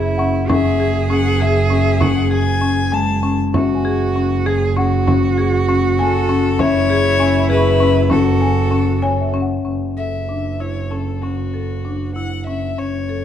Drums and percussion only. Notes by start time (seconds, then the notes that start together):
0.49 frame drum
1.40 frame drum
2.01 frame drum
2.93 frame drum
3.54 frame drum
4.46 frame drum
5.07 frame drum
5.99 frame drum
6.59 frame drum
7.50 frame drum
8.11 frame drum
9.04 frame drum